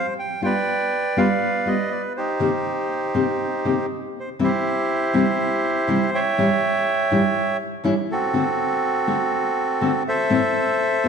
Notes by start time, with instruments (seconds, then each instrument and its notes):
Already playing: bandoneon C5
0.19 bandoneon G5
0.42 nylon-string guitar G3 B3 F4, bandoneon B4 G5
0.46 bandoneon D5
1.17 nylon-string guitar G3 B3 F4, bandoneon B4 D5 F5
1.66 nylon-string guitar G3 B3 F4, bandoneon D#5
1.91 bandoneon D5
2.17 bandoneon D#4 G4 C5
2.40 nylon-string guitar C3 D#3 A#3 C4 G4
3.14 nylon-string guitar C3 D#3 A#3 C4 G4
3.65 nylon-string guitar C3 D#3 A#3 C4 G4
4.20 bandoneon C5
4.39 nylon-string guitar C3 E3 G3 C4 E4, bandoneon E4
4.43 bandoneon G4 C5
5.14 nylon-string guitar C3 E3 G3 C4 E4
5.88 nylon-string guitar C3 E3 G3 C4 E4
6.14 bandoneon C#5 E5 G5
6.38 nylon-string guitar A2 E3 G3 C#4 E4
7.11 nylon-string guitar A2 E3 G3 C#4 E4
7.84 nylon-string guitar A2 E3 G3 C#4 E4
8.12 bandoneon C4 F#4 A4
8.33 nylon-string guitar D3 A3 C4 F#4
9.07 nylon-string guitar D3 A3 C4 F#4
9.81 nylon-string guitar D3 A3 C4 F#4
10.08 bandoneon A4 C5 E5
10.30 nylon-string guitar A2 E3 A3 C4 E4
11.04 nylon-string guitar G3 B3 F4